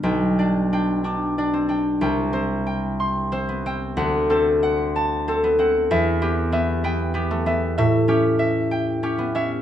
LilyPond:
<<
  \new Staff \with { instrumentName = "Harp" } { \time 6/8 \key g \major \tempo 4. = 62 << { g''8 d''8 g''8 d'''8 d''8 g''8 | g''8 c''8 g''8 c'''8 c''8 g''8 | fis''8 a'8 fis''8 a''8 a'8 fis''8 | e''8 g'8 e''8 g''8 g'8 e''8 |
e''8 g'8 e''8 g''8 g'8 e''8 | } \\ { g'2.~ | g'2. | r2. | r2. |
r2. | } >> }
  \new Staff \with { instrumentName = "Harp" } { \time 6/8 \key g \major <b,, g b d'>8 d'8 d'8 d'8 d'16 c'16 d'8 | c,8 c'4. c'16 b16 c'8 | d,8 c'4. c'16 b16 c'8 | e,8 b8 b8 b8 b16 a16 b8 |
a,8 cis'4. cis'16 b16 cis'8 | }
>>